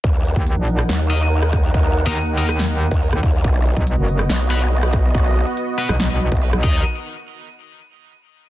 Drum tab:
HH |x-xxx-x-xxx---x-|x-xxx-x-xxx---x-|x-xxx-x-xxx---x-|x-xxx-x-xxx-----|
SD |-------ro----rr-|-------ro----r--|-------ro----rr-|-------ro----r--|
BD |o--o----------o-|o----------o--o-|o--o----------o-|o----------o--o-|

HH |----------------|
SD |----------------|
BD |----------------|